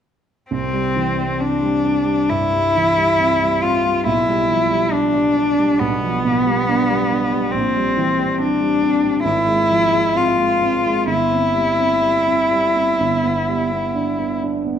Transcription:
0.51 grand piano C2, cello C4
0.73 grand piano G3
0.96 grand piano E3
1.19 grand piano G3
1.40 grand piano C4, cello D4
1.62 grand piano G3
1.84 grand piano C4
2.05 grand piano G3
2.29 grand piano G2, cello E4
2.53 grand piano G3
2.76 grand piano E3
2.98 grand piano G3
3.20 grand piano C4
3.43 grand piano G3
3.63 grand piano C4, cello F4
3.86 grand piano G3
4.06 grand piano B1, cello E4
4.28 grand piano G3
4.50 grand piano F3
4.71 grand piano G3
4.93 cello D4, grand piano D4
5.15 grand piano G3
5.37 grand piano D4
5.59 grand piano G3
5.79 grand piano B1, cello B3
6.04 grand piano F3
6.25 grand piano B2
6.46 grand piano G3
6.68 grand piano D4
6.90 grand piano G3
7.11 grand piano D4
7.34 grand piano G3
7.51 grand piano A#1, cello C4
7.76 grand piano G3
7.97 grand piano E3
8.19 grand piano G3
8.38 grand piano C4, cello D4
8.61 grand piano G3
8.82 grand piano C4
9.03 grand piano G3
9.24 grand piano G#1, cello E4
9.47 grand piano G#3
9.70 grand piano F3
9.92 grand piano G#3
10.15 grand piano C4, cello F4
10.38 grand piano G#3
10.62 grand piano C4
10.85 grand piano G#3
11.07 grand piano G1, cello E4
11.31 grand piano C4
11.54 grand piano G3
11.79 grand piano C4
12.02 grand piano G3
12.27 grand piano C4
12.51 grand piano G3
12.76 grand piano C4
13.00 grand piano G1
13.24 grand piano B3
13.48 grand piano G3
13.72 grand piano B3
13.95 grand piano D4
14.19 grand piano B3
14.42 grand piano D4
14.65 grand piano B3

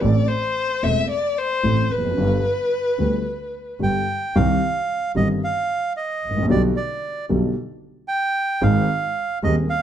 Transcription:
0.01 upright piano A1 A2 E3 A3 C4 A4, double bass A1, violin D5
0.28 violin C5
0.83 upright piano E1 E2 E3 A3 C4 A4, double bass E1, violin E5
1.10 violin D5
1.38 violin C5
1.63 upright piano A1 A2 E3 A3 C4 A4, double bass A1
1.91 double bass F1, violin B4
1.98 upright piano E2
2.05 upright piano F2
2.10 upright piano F#2
2.17 upright piano G1 G2 D3 G3 B3 G4, double bass G1
2.98 upright piano D2 D3 G3 B3 G4, double bass D2
3.79 upright piano G1 G2 D3 G3 B3 G4, double bass G1, bandoneon G5
4.35 double bass C2, upright piano C2 C3 D#3 G3 C4 G4, bandoneon F5
5.15 upright piano G1 G2 D#3 G3 C4 G4, double bass G1, bandoneon D#5
5.44 bandoneon F5
5.97 bandoneon D#5
6.24 double bass A1
6.30 upright piano G#1
6.37 upright piano A1
6.42 upright piano A#1
6.49 upright piano B1 B2 D3 G3 B3 G4, double bass B1, bandoneon D5
6.76 bandoneon D5
7.29 upright piano B1 B2 D3 G3 B3 G4, double bass B1
8.08 bandoneon G5
8.61 upright piano G#1 G#2 D#3 G#3 C4 G#4, double bass G#1, bandoneon F5
9.43 upright piano D#1 D#2 D#3 G#3 C4 G#4, double bass D#2, bandoneon D#5
9.70 bandoneon F5

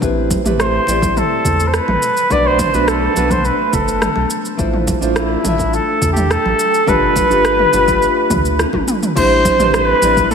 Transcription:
0.00 sub bass A1, nylon-string guitar A3 C4 E4 G4 B4, kick, cabasa
0.31 kick, muted conga, high conga, cabasa
0.44 sub bass A1, nylon-string guitar A3 C4 E4 G4 B4, mid tom, cabasa
0.60 flugelhorn C5, cross-stick, cabasa
0.85 sub bass A1, nylon-string guitar A3 C4 E4 G4, muted conga, cabasa
0.90 nylon-string guitar D5
1.02 kick, high conga, cabasa
1.17 flugelhorn A4, mid tom, cabasa
1.45 sub bass E2, kick, low conga, cabasa
1.60 cabasa
1.68 flugelhorn C5
1.74 flugelhorn B4, cross-stick, cabasa
1.88 sub bass A1, mid tom, high conga
2.02 cabasa
2.17 cabasa
2.30 sub bass B1, nylon-string guitar A3 B3 D4 F#4 B4, flugelhorn D5, kick, cabasa
2.47 flugelhorn C5
2.59 kick, mid tom, muted conga, high conga, cabasa
2.73 sub bass B1, nylon-string guitar A3 B3 D4 F#4 B4, flugelhorn B4, cabasa
2.88 flugelhorn A4, cross-stick, cabasa
3.14 sub bass B1, nylon-string guitar A3 B3 D4 F#4, muted conga, cabasa
3.18 nylon-string guitar B4
3.30 flugelhorn C5, kick, mid tom, high conga, cabasa
3.45 flugelhorn B4, cabasa
3.73 sub bass F#1, flugelhorn A4, kick, low conga, cabasa
3.88 cabasa
4.02 cross-stick, mid tom, cabasa
4.16 sub bass B1, high conga
4.30 cabasa
4.45 cabasa
4.57 sub bass A1, nylon-string guitar A3 D4 E4 F4 C5, kick, cabasa
4.73 mid tom
4.87 kick, muted conga, high conga, cabasa
5.01 sub bass A1, nylon-string guitar A3 D4 E4 F4 C5, cabasa
5.16 flugelhorn E4, cross-stick, cabasa
5.42 sub bass A1, nylon-string guitar A3 D4 F4, mid tom, muted conga, cabasa
5.47 nylon-string guitar E5
5.58 kick, high conga, cabasa
5.73 flugelhorn A4, cabasa
6.02 sub bass E2, kick, low conga, cabasa
6.12 flugelhorn G4
6.17 mid tom, cabasa
6.31 flugelhorn A4, cross-stick, cabasa
6.45 sub bass A1, high conga
6.59 cabasa
6.74 cabasa
6.86 sub bass G1, nylon-string guitar A3 D4 F4 G4 B4, flugelhorn B4, kick, mid tom, cabasa
7.16 kick, muted conga, high conga, cabasa
7.30 sub bass G1, nylon-string guitar A3 D4 F4 G4 B4, cabasa
7.45 cross-stick, cabasa
7.59 mid tom
7.71 sub bass G1, nylon-string guitar A3 D4 F4 G4, muted conga, cabasa
7.76 nylon-string guitar B4
7.87 kick, high conga, cabasa
8.02 cabasa
8.30 sub bass D2, kick, mid tom, low conga, cabasa
8.45 cabasa
8.59 cross-stick, high tom, cabasa
8.73 sub bass G1, kick, high tom, high conga
8.88 mid tom, cabasa
9.03 mid tom, cabasa
9.16 sub bass A1, nylon-string guitar G3 C4 D4 E4 C5, flugelhorn C5, kick, crash, cabasa
9.45 kick, muted conga, high conga, cabasa
9.58 sub bass A1, nylon-string guitar G3 C4 D4 E4 B4, mid tom, cabasa
9.74 flugelhorn B4, cross-stick, cabasa
10.00 sub bass A1, nylon-string guitar G3 C4 D4 E4, muted conga, cabasa
10.05 nylon-string guitar D5
10.17 kick, high conga, cabasa
10.31 flugelhorn A4, mid tom, cabasa

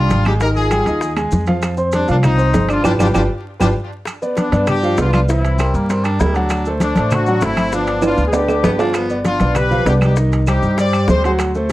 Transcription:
Already playing: grand piano G3 G4 G5, horn section D4
0.00 horn section F4
0.10 upright bass G#1, high bongo, low bongo, high conga, high timbale, maracas
0.25 grand piano G#3 G#4 G#5, horn section D#4 G4, high bongo, high conga, high timbale, claves, maracas
0.41 grand piano D#3 D#4 D#5, horn section G4 A#4, high bongo, high conga, high timbale, maracas
0.56 horn section F4 G#4, high conga, maracas
0.71 grand piano G3 G4 G5, high bongo, high conga, high timbale, claves, maracas
0.86 upright bass D#2, grand piano D#4 D#5 D#6, high bongo, high conga, high timbale, maracas
1.01 high bongo, high conga, maracas
1.16 grand piano G#3 G#4 G#5, high conga, high timbale, claves, maracas
1.32 upright bass F2, high bongo, low bongo, high conga, maracas
1.46 grand piano F3 F4 F5, high bongo, high conga, high timbale, maracas
1.62 high bongo, high conga, high timbale, claves, maracas
1.77 grand piano C4 C5 C6, high conga, maracas
1.92 horn section G3 D4, high bongo, high conga, high timbale, maracas
2.08 upright bass C2, grand piano F3 F4 F5, horn section A#3 D4, high bongo, high conga, maracas
2.23 horn section C4 D#4, high bongo, high conga, low conga, high timbale, claves, maracas
2.38 grand piano C4 C5 C6, high bongo, high conga, maracas
2.54 upright bass G1, high bongo, low bongo, high conga, high timbale, low timbale, maracas
2.69 grand piano D4 D5 D6, horn section D4 F4, high bongo, high timbale, claves, maracas
2.83 upright bass G1, horn section D4 F4 G4, grand piano F4 G4 B4, high bongo, high conga, high timbale, claves, maracas
2.99 upright bass G1, horn section D4 F4 G4, grand piano F4 G4 B4, high bongo, high conga, high timbale, claves, maracas
3.14 upright bass G1, horn section D4 F4 G4, grand piano F4 G4 B4, high bongo, high conga, high timbale, claves, maracas
3.59 upright bass G1, horn section D4 F4 G4, grand piano F4 G4 B4, high bongo, high conga, high timbale, claves, maracas
4.05 high bongo, high conga, high timbale, claves, maracas
4.22 grand piano B3 B4 D5, high conga, maracas
4.37 horn section B3 D4, high bongo, high conga, high timbale, maracas
4.52 upright bass G2, grand piano B3 B4 D5, high conga, high timbale, maracas
4.67 horn section D4 G4, high bongo, high conga, low conga, high timbale, claves, maracas
4.83 grand piano F3 F4 F5, high conga, maracas
4.97 upright bass C2, grand piano B3 B4 D5, horn section D4 F4, high bongo, low bongo, high conga, high timbale, low timbale, maracas
5.13 horn section D4 F4, high conga, high timbale, claves, maracas
5.28 grand piano E3 E4 E5, horn section C4 E4, high bongo, high conga, maracas
5.43 high bongo, high conga, high timbale, maracas
5.58 grand piano G3 G4 A#4, baritone saxophone C4, high bongo, high conga, high timbale, claves, maracas
5.74 upright bass G2, baritone saxophone A#3, high bongo, high conga, maracas
5.89 grand piano G3 G4 A#4, baritone saxophone C4, high bongo, high conga, high timbale, maracas
6.04 baritone saxophone D4, high bongo, high conga, high timbale, claves, maracas
6.20 upright bass D2, grand piano G3 G4 A#4, baritone saxophone E4, high bongo, low bongo, high conga, low timbale, maracas
6.35 grand piano F#3 F#4 F#5, baritone saxophone D4, high conga, high timbale, maracas
6.50 high bongo, high conga, high timbale, claves, maracas
6.65 grand piano A3 A4 C5, high conga, maracas
6.80 horn section A3 D4, high bongo, high conga, high timbale, maracas
6.95 upright bass A1, grand piano A3 A4 C5, high conga, high timbale, maracas
7.11 horn section D4 F#4, high bongo, high conga, low conga, high timbale, claves, maracas
7.26 grand piano F#3 F#4 F#5, high conga, maracas
7.41 upright bass G1, grand piano A3 A4 C5, horn section C4 E4, high bongo, low bongo, high conga, high timbale, maracas
7.57 high conga, high timbale, claves, maracas
7.72 grand piano F3 F4 F5, horn section B3 D4, high bongo, high conga, maracas
7.87 high bongo, high conga, high timbale, maracas
8.02 grand piano B3 B4 D5, horn section D4, high bongo, high conga, high timbale, claves, maracas
8.06 horn section F4
8.18 upright bass D2, high bongo, high conga, maracas
8.27 horn section G#4
8.32 grand piano B3 B4 D5, horn section D4 G4, high bongo, high conga, low timbale, maracas
8.48 high bongo, high conga, low timbale, claves, maracas
8.63 upright bass G1, grand piano B3 B4 D5, baritone saxophone B3, high bongo, low bongo, high conga, low timbale, maracas
8.78 grand piano F3 F4 F5, baritone saxophone D4, low timbale, maracas
8.94 baritone saxophone B3, high bongo, high conga, high timbale, claves, maracas
9.09 grand piano B3 B4 D5, high conga, maracas
9.25 horn section D4 F4, high bongo, high conga, high timbale, maracas
9.40 upright bass B1, grand piano B3 B4 D5, high conga, high timbale, maracas
9.55 horn section G4 B4, high bongo, high conga, low conga, high timbale, claves, maracas
9.71 grand piano F3 F4 F5, high conga, low conga, maracas
9.86 upright bass C2, grand piano B3 B4 D5, horn section D4 G4, high bongo, low bongo, high conga, high timbale, low timbale, maracas
10.01 horn section D#4 G4, high conga, high timbale, claves, maracas
10.16 grand piano D#3 D#4 D#5, high bongo, maracas
10.32 high bongo, high conga, high timbale, maracas
10.47 grand piano G3 G4 C5, horn section D#4 G4, high bongo, high conga, high timbale, claves, maracas
10.62 upright bass G2, high bongo, high conga, maracas
10.78 grand piano G3 G4 C5, horn section G4 D5, high bongo, high conga, high timbale, maracas
10.93 high bongo, high conga, high timbale, claves, maracas
11.08 upright bass D2, grand piano G3 G4 C5, horn section G4 C5, high bongo, low bongo, high conga, low timbale, maracas
11.24 grand piano F#3 F#4 F#5, horn section G#4 C5, high conga, high timbale, maracas
11.39 high bongo, high conga, high timbale, claves, maracas
11.55 grand piano A3 A4 C5, high conga, maracas

